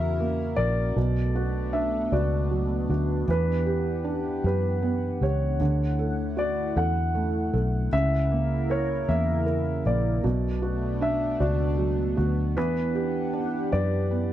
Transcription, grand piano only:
0.00 0.59 E5 medium
0.56 1.77 D5 medium
1.73 2.13 E5 medium
2.12 2.86 D5 medium
3.31 4.45 B4 medium
4.46 5.25 B4 medium
5.23 6.34 C#5 medium
6.38 6.78 D5 medium
6.77 7.89 F#5 medium
7.93 8.72 E5 medium
8.71 9.10 C#5 medium
9.09 9.82 E5 medium
9.87 11.06 D5 medium
11.02 11.42 E5 medium
11.40 12.14 D5 medium
12.57 13.71 B4 medium
13.72 14.33 B4 medium
13.72 14.33 D5 medium

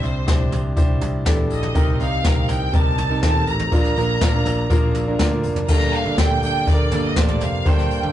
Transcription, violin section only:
0.04 0.53 C5 medium
1.51 1.97 D#5 medium
2.00 2.46 F5 medium
2.49 2.74 G5 medium
2.74 3.22 A5 medium
3.23 3.46 A5 loud
3.48 5.20 A#5 medium
5.70 5.92 A#5 medium
5.93 6.18 F5 medium
6.19 6.42 G5 loud
6.43 6.66 G5 medium
6.68 7.04 D5 medium
7.05 7.17 D#5 medium
7.17 7.41 D5 medium
7.42 7.66 F5 medium
7.66 8.12 G5 medium

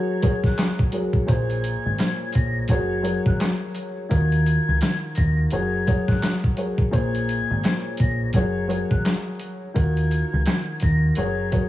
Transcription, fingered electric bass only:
1.29 1.75 A#1 loud
1.86 1.97 G#1 loud
2.36 2.64 A#1 loud
2.69 3.15 F#1 loud
3.26 3.38 G#1 medium
4.11 4.57 D#2 loud
4.68 4.79 C#2 medium
5.18 5.46 D#2 medium
5.53 5.98 F#1 loud
6.09 6.20 G#1 medium
6.94 7.39 A#1 loud
7.51 7.62 G#1 loud
8.00 8.28 A#1 loud
8.34 8.80 F#1 loud
8.91 9.02 G#1 medium
9.76 10.22 D#2 loud
10.33 10.44 C#2 medium
10.83 11.11 D#2 medium
11.18 11.63 F#1 loud

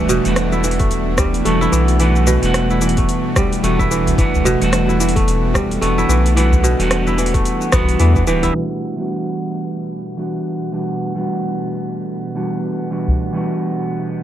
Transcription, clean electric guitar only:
0.00 0.21 E3 medium
0.00 0.21 G3 medium
0.00 0.22 B3 medium
0.00 0.22 D4 medium
0.00 0.22 F#4 medium
0.23 1.42 E3 medium
0.23 1.42 G3 medium
0.23 1.43 B3 medium
0.23 1.44 D4 medium
0.23 1.44 F#4 medium
1.45 1.97 E3 medium
1.45 1.97 G3 medium
1.45 1.98 B3 medium
1.45 1.98 D4 medium
1.45 1.98 F#4 medium
1.99 2.39 E3 medium
1.99 2.39 G3 medium
1.99 2.40 B3 medium
1.99 2.40 D4 medium
1.99 2.40 F#4 medium
2.41 3.60 E3 medium
2.41 3.61 G3 medium
2.41 3.61 B3 medium
2.41 3.62 D4 medium
2.41 3.62 F#4 loud
3.63 4.15 E3 medium
3.63 4.16 G3 medium
3.63 4.16 B3 medium
3.63 4.16 D4 medium
3.63 4.16 F#4 medium
4.18 4.58 E3 medium
4.18 4.58 G3 medium
4.18 4.58 B3 medium
4.18 4.58 D4 medium
4.18 4.59 F#4 medium
4.60 5.78 E3 medium
4.60 5.79 G3 medium
4.60 5.79 B3 medium
4.60 5.80 D4 medium
4.64 5.80 F#4 medium
5.81 6.34 E3 medium
5.81 6.34 G3 medium
5.81 6.34 B3 medium
5.81 6.34 D4 medium
5.81 6.35 F#4 medium
6.36 6.76 E3 medium
6.36 6.76 G3 medium
6.36 6.76 B3 medium
6.36 6.76 D4 medium
6.36 6.77 F#4 medium
6.78 7.70 E3 medium
6.78 7.70 G3 medium
6.78 7.71 B3 medium
6.78 7.71 D4 medium
6.78 7.72 F#4 loud
7.72 8.24 E3 medium
7.72 8.25 G3 medium
7.72 8.25 B3 medium
7.72 8.25 D4 medium
7.72 8.25 F#4 loud
8.27 8.52 E3 medium
8.27 8.52 G3 medium
8.27 8.52 B3 medium
8.27 8.52 D4 medium
8.27 8.53 G4 medium
8.54 8.94 E3 medium
8.54 8.94 G3 medium
8.54 8.94 B3 medium
8.54 8.95 D4 medium
8.54 8.95 F#4 medium
8.97 10.15 E3 medium
8.97 10.15 G3 medium
8.97 10.16 B3 medium
8.97 10.16 D4 medium
8.97 10.17 F#4 medium
10.17 10.70 E3 medium
10.17 10.70 G3 soft
10.17 10.70 B3 soft
10.17 10.70 D4 medium
10.17 10.71 F#4 medium
10.72 11.12 E3 medium
10.72 11.12 G3 medium
10.72 11.12 B3 medium
10.72 11.13 D4 medium
10.72 11.13 F#4 medium
11.14 12.33 E3 medium
11.14 12.33 G3 medium
11.14 12.34 B3 medium
11.14 12.34 D4 medium
11.14 12.35 F#4 medium
12.35 12.88 E3 medium
12.35 12.88 G3 medium
12.35 12.88 B3 medium
12.35 12.88 D4 medium
12.35 12.89 F#4 medium
12.90 13.30 E3 medium
12.90 13.31 G3 medium
12.90 13.31 B3 medium
12.90 13.31 D4 medium
12.90 13.31 F#4 medium
13.32 14.23 E3 medium
13.32 14.23 G3 medium
13.32 14.23 B3 medium
13.32 14.23 D4 medium
13.32 14.23 F#4 medium

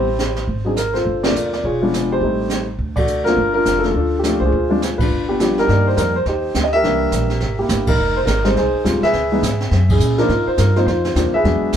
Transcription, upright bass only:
0.00 0.44 A1 medium
0.48 1.02 G#1 medium
1.05 1.32 G1 medium
1.34 1.61 D#2 medium
1.64 2.18 E1 medium
2.21 2.76 A1 medium
2.79 3.34 D2 medium
3.37 3.63 G1 medium
3.65 3.92 F1 medium
3.95 4.38 D2 medium
4.40 4.51 C2 medium
4.52 5.07 D2 medium
5.10 5.65 G1 medium
5.68 5.96 G2 medium
5.97 6.25 F2 medium
6.26 6.54 D#2 medium
6.55 6.83 D2 medium
6.83 7.11 C2 medium
7.12 7.40 A#1 medium
7.41 7.69 G#1 medium
7.69 7.97 G1 medium
7.98 8.26 F1 medium
8.27 8.55 G#1 medium
8.56 8.72 C2 medium
8.74 muted upright bass stroke soft
8.85 9.01 D#2 medium
9.02 muted upright bass stroke soft
9.13 9.41 C#2 medium
9.42 9.70 G#2 medium
9.71 9.99 F#2 medium
10.00 10.28 A#2 medium
10.29 10.45 G#2 medium
10.47 muted upright bass stroke soft
10.58 10.86 G2 medium
10.87 11.14 F2 medium
11.15 11.32 D#2 medium
11.34 muted upright bass stroke soft
11.44 11.61 E2 medium
11.62 muted upright bass stroke soft
11.73 11.77 D2 medium

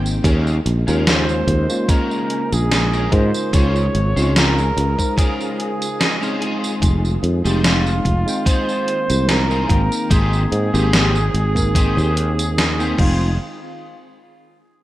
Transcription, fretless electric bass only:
0.00 0.19 G#1 medium
0.24 0.59 D#2 loud
0.66 0.84 A#1 medium
0.88 1.42 D#2 loud
1.47 1.66 D#2 medium
2.52 3.07 A#1 medium
3.12 3.30 G#2 medium
3.53 3.87 C#2 loud
3.95 4.13 G#1 medium
4.17 4.71 C#2 loud
4.77 4.95 C#2 medium
6.82 7.16 F1 loud
7.23 7.41 F2 medium
7.45 8.00 F1 loud
8.05 8.23 F1 medium
9.10 9.64 C2 medium
9.69 9.88 G#1 medium
10.11 10.45 G#1 loud
10.52 10.70 G#2 medium
10.74 11.29 G#1 medium
11.34 11.99 G#1 medium
11.97 12.93 D#2 loud
12.99 13.37 F1 loud

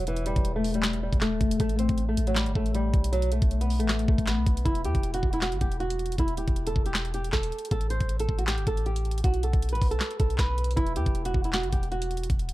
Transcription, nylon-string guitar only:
0.08 0.25 E3 medium
0.26 0.54 G3 medium
0.56 0.73 A3 medium
0.75 1.01 G3 medium
1.03 1.20 G3 medium
1.21 1.57 A3 medium
1.60 1.77 A3 loud
1.79 2.06 C4 medium
2.09 2.26 A3 medium
2.27 2.35 F#3 medium
2.37 2.54 G3 medium
2.56 2.73 A3 medium
2.75 3.11 G3 medium
3.12 3.30 F#3 loud
3.32 3.59 A3 medium
3.61 3.78 B3 medium
3.79 4.06 A3 medium
4.09 4.26 A3 medium
4.28 4.64 B3 medium
4.65 4.82 E4 medium
4.85 5.12 G4 medium
5.14 5.31 F#4 medium
5.33 5.41 E4 medium
5.43 5.59 F#4 medium
5.61 5.78 G4 medium
5.80 6.16 F#4 medium
6.19 6.36 E4 medium
6.38 6.65 G4 medium
6.67 6.84 A4 medium
6.86 7.12 G4 medium
7.14 7.31 G4 medium
7.33 7.69 A4 medium
7.72 7.89 A4 loud
7.90 8.18 C5 medium
8.20 8.37 A4 medium
8.38 8.47 F#4 medium
8.48 8.65 G4 medium
8.67 8.84 A4 medium
8.86 9.22 G4 medium
9.24 9.41 F#4 medium
9.44 9.71 A4 medium
9.72 9.90 B4 medium
9.91 10.18 A4 medium
10.20 10.37 A4 medium
10.39 10.75 B4 medium
10.76 10.94 E4 medium
10.96 11.24 G4 medium
11.26 11.43 F#4 medium
11.45 11.53 E4 medium
11.54 11.71 F#4 medium
11.72 11.90 G4 medium
11.92 12.28 F#4 medium

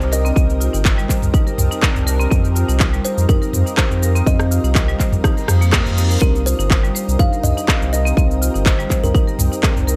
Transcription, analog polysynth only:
0.00 0.34 D4 medium
0.00 0.34 D#4 medium
0.00 0.34 G4 medium
0.00 0.34 A#4 loud
0.36 1.80 C4 medium
0.36 1.80 D#4 medium
0.36 1.80 G4 medium
0.36 1.80 A#4 medium
1.83 2.29 D4 medium
1.83 2.29 D#4 medium
1.83 2.29 G4 medium
1.83 2.29 A#4 loud
2.32 3.75 D#4 medium
2.32 3.75 G4 medium
2.32 3.75 A#4 medium
3.78 4.24 C4 medium
3.78 4.24 D#4 medium
3.78 4.24 G4 medium
3.78 4.24 A#4 loud
4.27 5.70 C4 medium
4.27 5.70 D#4 medium
4.27 5.70 G4 medium
4.27 5.70 A#4 medium
5.73 5.83 C4 medium
5.73 5.83 D#4 medium
5.73 5.83 G4 medium
5.73 5.83 A#4 medium
5.86 6.19 C4 medium
5.86 6.19 D#4 medium
5.86 6.19 G4 medium
5.86 6.19 A#4 medium
6.22 7.65 D4 medium
6.22 7.65 D#4 medium
6.22 7.65 G4 medium
7.68 8.14 D4 medium
7.68 8.14 D#4 medium
7.68 8.14 A#4 loud
8.17 9.61 C4 medium
8.17 9.61 D#4 medium
8.17 9.61 A#4 medium
9.63 9.96 D4 medium
9.63 9.96 D#4 medium
9.63 9.96 A#4 loud

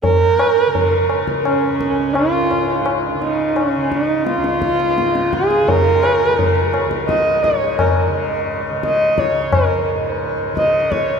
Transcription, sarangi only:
0.04 1.06 A#4 loud
1.45 2.16 C#4 medium
2.14 2.86 F4 medium
3.22 3.58 D#4 medium
3.56 3.93 C#4 medium
3.92 4.26 D#4 medium
4.27 5.35 F4 medium
5.33 5.69 G#4 medium
5.68 6.05 A#4 medium
6.05 6.37 B4 medium
6.37 6.73 A#4 medium
7.08 7.45 D#5 medium
7.44 7.78 C#5 medium
7.79 8.11 A#4 medium
8.85 9.20 D#5 medium
9.19 9.53 C#5 medium
9.53 9.85 A#4 medium
10.57 10.93 D#5 medium
10.91 11.20 C#5 medium

